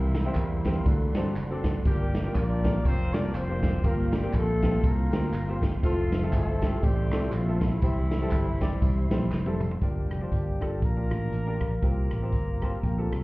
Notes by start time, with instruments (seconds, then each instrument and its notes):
Already playing: fingered electric bass C2, grand piano C3 C4 E4 G4 A#4 C5, horn section E3 G3 A#3 E4, tonewheel organ A#4 E5 G5 C6
0.14 snare, ride, tambourine
0.26 grand piano C4 E4 G4 A#4 C5
0.35 fingered electric bass E2, kick, clap, ride, tambourine
0.65 grand piano C4 E4 G4 A#4 C5, kick, snare, ride, tambourine
0.86 fingered electric bass D2, grand piano D3, tonewheel organ A4 D5 F#5, kick, ride, tambourine
1.14 fingered electric bass G2, grand piano C4 D4 F#4 A4 C5, snare, ride, tambourine
1.36 fingered electric bass F#1, clap, ride, tambourine
1.50 grand piano C4 D4 F#4 A4 D5
1.64 kick, snare, ride, tambourine
1.85 fingered electric bass G1, grand piano G2 A#3 D4 F4 G4 A#4, horn section G3 A#3 D4 G4, tonewheel organ A#4 F5 G5 D6, kick, ride, tambourine
2.14 snare, ride, tambourine
2.24 grand piano A#3 D4 F4 G4 A#4
2.34 fingered electric bass A#1, horn section D4 F4 A#4 D5, kick, clap, ride, tambourine
2.64 grand piano A#3 D4 F4 G4 A#4, kick, snare, ride, tambourine
2.85 fingered electric bass F1, horn section C4 F4 C5, kick, ride, tambourine
3.13 fingered electric bass C2, grand piano A#3 D4 F4 G4 A#4, horn section D4 D5, snare, ride, tambourine
3.34 fingered electric bass F1, horn section C4 F4 C5, clap, ride, tambourine
3.49 grand piano A#3 D4 F4 G4 C5
3.63 kick, snare, ride, tambourine
3.84 fingered electric bass G1, grand piano G2 A#3 C4 F4 G4 A#4, horn section A#3 F4 A#4, tonewheel organ A#3 C6, kick, ride, tambourine
4.13 horn section G3 G4, snare, ride, tambourine
4.23 grand piano A#3 C4 F4 G4 A#4
4.33 fingered electric bass A#1, horn section A3 C4 F4 A4, kick, clap, ride, tambourine
4.62 grand piano A#3 C4 F4 G4 A4, kick, snare, ride, tambourine
4.83 fingered electric bass C2, horn section A#3 F4 A#4, kick, ride, tambourine
5.12 fingered electric bass D2, grand piano A#3 C4 F4 G4 A#4, snare, ride, tambourine
5.32 fingered electric bass G1, clap, ride, tambourine
5.48 grand piano A#3 C4 F4 G4 C5
5.62 kick, snare, ride, tambourine
5.81 fingered electric bass F1, horn section F3 A3 C4 F4, grand piano A3 C4 E4 F4 A4, tonewheel organ A4 C5 E5, kick, ride, tambourine
6.12 snare, ride, tambourine
6.23 grand piano A3 C4 E4 F4 A4
6.33 fingered electric bass G1, horn section A3 C4 E4 A4, kick, clap, ride, tambourine
6.62 grand piano A3 C4 E4 F4 G4, kick, snare, ride, tambourine
6.82 fingered electric bass A1, horn section G3 C4 E4 G4, kick, ride, tambourine
7.11 fingered electric bass C2, grand piano A3 C4 E4 F4 A4, snare, ride, tambourine
7.32 fingered electric bass A#1, horn section F3 F4, clap, ride, tambourine
7.47 grand piano A3 C4 E4 F4 A4
7.61 horn section E3 G3 C4 E4, kick, snare, ride, tambourine
7.82 fingered electric bass C2, grand piano C3 G3 C4 E4 G4 C5, tonewheel organ G4 C5 E5, kick, ride, tambourine
8.11 snare, ride, tambourine
8.21 grand piano G3 C4 E4 G4 A4
8.31 fingered electric bass G1, kick, clap, ride, tambourine
8.61 grand piano G3 C4 E4 G4 D5, kick, snare, ride, tambourine
8.82 fingered electric bass C2, kick, ride, tambourine
9.10 fingered electric bass A#1, grand piano G3 C4 E4 G4 C5, snare, ride, tambourine
9.31 fingered electric bass F1, snare, clap, tambourine
9.46 grand piano G3 C4 E4 G4 A4, high tom
9.60 mid tom, tambourine
9.71 floor tom
9.81 fingered electric bass G1, grand piano G2 D4 F4 G4 A#4, horn section G3 A#3 D4 G4, kick, closed hi-hat
10.10 fingered electric bass F1, cross-stick, closed hi-hat
10.21 grand piano D4 F4 G4 C5
10.32 fingered electric bass G1, kick, closed hi-hat
10.61 grand piano D4 F4 G4 A4, kick, cross-stick, closed hi-hat
10.82 fingered electric bass A#1, horn section A#3 D4 F4 A#4, kick, closed hi-hat
10.97 grand piano D4 F4 G4 A#4
11.11 fingered electric bass A1, cross-stick, closed hi-hat
11.32 fingered electric bass A1, closed hi-hat
11.47 grand piano D4 F4 G4 A#4
11.61 fingered electric bass A#1, kick, cross-stick, closed hi-hat
11.82 fingered electric bass C2, grand piano C3 C4 F4 G4 A#4, horn section A#3 F4 G4 A#4, kick, closed hi-hat
12.11 fingered electric bass A1, cross-stick, closed hi-hat
12.22 grand piano C4 F4 G4 C5
12.32 fingered electric bass G1, kick, closed hi-hat
12.61 grand piano C4 F4 G4 C5 A5, kick, cross-stick, closed hi-hat
12.83 fingered electric bass A#1, grand piano G5, kick, closed hi-hat
12.98 grand piano C4 F4 G4 A4
13.12 fingered electric bass C2, cross-stick, closed hi-hat